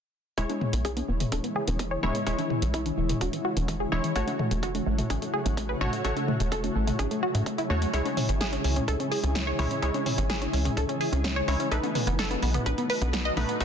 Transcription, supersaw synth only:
0.38 G#3 E4 C#5
2.03 G#3 E4 C#5
2.27 G#3 E4 C#5
3.92 G#3 E4 C#5
4.16 A3 F#4 C#5
5.81 A3 F#4 C#5
6.05 A3 F#4 C#5
7.70 A3 F#4 C#5
7.94 G#3 E4 C#5
9.59 G#3 E4 C#5
9.83 G#3 E4 C#5
11.48 G#3 E4 C#5
11.72 A3 D#4 B4
13.37 A3 D#4 B4
13.61 A3 D#4 B4

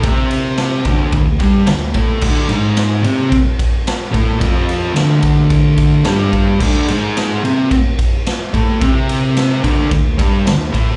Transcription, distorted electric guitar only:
0.03 C3 C4
0.85 D2 D3
1.13 D2
1.39 G2 G3
1.67 D2
1.95 A2 A3
2.23 D2 D3
2.49 G#2 G#3
3.04 C3 C4
3.30 muted distorted electric guitar stroke
4.11 A2 A3
4.39 F2 F3
4.94 D2 D3
6.05 G2 G3
6.60 D2 D3
6.87 G#2 G#3
7.44 C3 C4
7.71 muted distorted electric guitar stroke
8.53 A2 A3
8.81 C3 C4
9.64 D2 D3
9.91 D2
10.18 G2 G3
10.46 D2
10.72 A2 A3

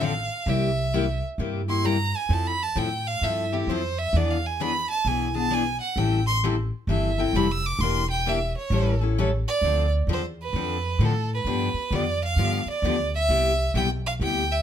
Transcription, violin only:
0.04 F5
0.49 E5
1.70 C6
1.86 A#5
2.16 G#5
2.33 A5
2.47 B5
2.63 A5
2.78 G5
3.07 F5
3.24 E5
3.54 G4
3.70 C5
3.98 E5
4.17 D5
4.31 F5
4.46 G#5
4.61 B5
4.90 A5
5.08 G#5
5.37 A5
5.54 G#5
5.81 F#5
5.98 G5
6.27 C6
6.90 E5
7.20 G5
7.36 B5
7.52 E6
7.66 D6
7.81 C6
8.11 G5
8.29 E5
8.57 C#5
9.48 D5
10.13 C5
10.42 B4
11.05 A4
11.34 B4
11.95 D5
12.25 F5
12.70 D5
13.15 E5
13.77 G5
14.06 F5
14.23 G5
14.52 E5

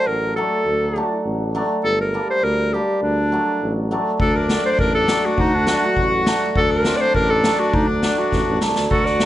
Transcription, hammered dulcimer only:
Already playing: F#3
0.37 F#3 A3 D4
0.96 F#3 A3 D4
1.55 F#3 A3 D4
2.14 G3 A#3 D4
2.74 G3 A#3 D4
3.32 F#3 A3 D4
3.91 F#3 A3 D4
4.50 F#3 A3 D4
5.08 F#3 A3 D4
5.67 F#3 A3 D4
6.27 F#3 A3 D4
6.85 F#3 A3 C4
7.44 F#3 A3 D4
8.02 F#3 A3 D4
8.61 F#3 A3 D4
9.22 F#3 A3 D4

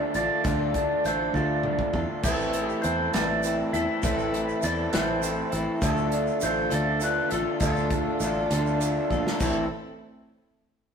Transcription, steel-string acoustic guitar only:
Already playing: D3 A3 D4 F4 A4
0.15 D4 F4 A4
0.44 D3 A3 D4 F4 A4
1.04 A3 D4 F4 A4
1.35 D3 A3 D4 F4 A4
1.93 D4 F4 A4
2.25 A2 E3 A3 C4 E4 A4
2.82 A3 C4 E4
2.86 A4
3.13 A2 E3 A3 C4 E4 A4
3.74 A3 C4 E4 A4
4.03 A2 E3 A3 C4 E4 A4
4.62 A3 C4 E4 A4
4.93 A2 E3 A3 C4 E4 A4
5.53 C4 E4 A4
5.57 A3
5.82 D3 A3 D4 F4 A4
6.42 A3 D4 F4 A4
6.70 D3 A3 D4 F4 A4
7.31 D4 F4 A4
7.61 D3 A3 D4 F4 A4
8.23 A3 D4 F4 A4
8.53 D3 A3 D4 F4 A4
9.11 D4 F4 A4
9.40 A2 E3 A3 C4 E4 A4

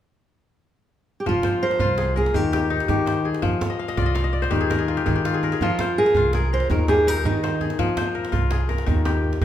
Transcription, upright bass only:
1.26 F1
1.80 C2
2.35 D#2
2.89 D#3
3.43 F2
3.97 C2
4.52 D#2
5.07 D#3
5.61 F2
6.15 C2
6.70 D#2
7.24 D#3
7.80 F2
8.32 C2
8.87 D#2
9.41 D#3

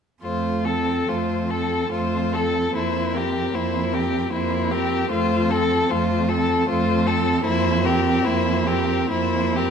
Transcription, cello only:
0.22 F2
1.08 F2
1.91 F2
2.74 F2
3.53 F2
4.31 F2
5.10 F2
5.90 F2
6.68 F2
7.44 F2
8.26 F2
9.11 F2

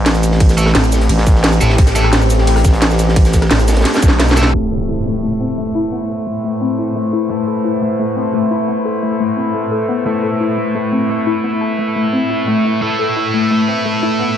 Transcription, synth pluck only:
4.54 A3
4.71 A4
4.89 E4
5.06 A3
5.23 A3
5.40 C4
5.58 A3
5.75 E4
5.92 B3
6.09 A4
6.27 A3
6.44 A3
6.61 C4
6.78 E4
6.96 A3
7.13 E4
7.30 A3
7.47 A4
7.65 E4
7.82 A3
7.99 A3
8.16 C4
8.33 A3
8.51 E4
8.68 B3
8.85 A4
9.02 A3
9.20 A3
9.37 C4
9.54 A3
9.71 A4
9.89 B3
10.06 A3
10.23 A4
10.40 E4
10.58 A3
10.75 A3
10.92 C4
11.09 A3
11.27 E4
11.44 B3
11.61 A4
11.78 A3
11.96 A3
12.13 C4
12.30 E4
12.47 A3
12.65 E4
12.82 A3
12.99 A4
13.16 E4
13.34 A3
13.51 A3
13.68 C4
13.85 A3
14.02 E4
14.20 B3

